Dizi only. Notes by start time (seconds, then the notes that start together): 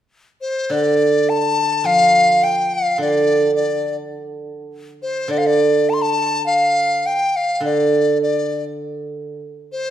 0.41 C5
0.71 D5
1.29 A5
1.86 F5
2.43 G5
2.74 F5
3.01 D5
3.56 D5
5.02 C5
5.31 D5
5.38 F5
5.46 D5
5.89 A5
5.93 C6
6.02 A5
6.46 F5
7.06 G5
7.36 F5
7.65 D5
8.23 D5
9.72 C5